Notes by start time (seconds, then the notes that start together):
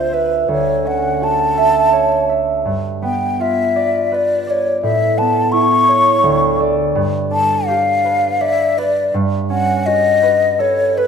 Already playing: D2 C4 F4 A4 C5 E5
0.12 B4 E5
0.48 D2 C#5
0.85 C#4 F#5
1.21 F#4 A5
1.57 E5
1.93 C#5
2.29 E5
2.65 G2
3.02 B3 G5
3.40 F4 E5
3.76 D5
4.12 B4 D5
4.47 C#5 D5
4.83 A2 E5
5.18 B3 A5
5.52 E4 C#6
5.88 C#5
6.23 D2
6.60 A4 D5
6.95 G2
7.31 D4 A5
7.67 G4 F5
8.05 B4
8.41 D5 E5
8.78 B4 D5
9.14 G2
9.50 C#4 F#5
9.86 F#4 D#5
10.22 B4
10.59 A4 C#5
10.97 B4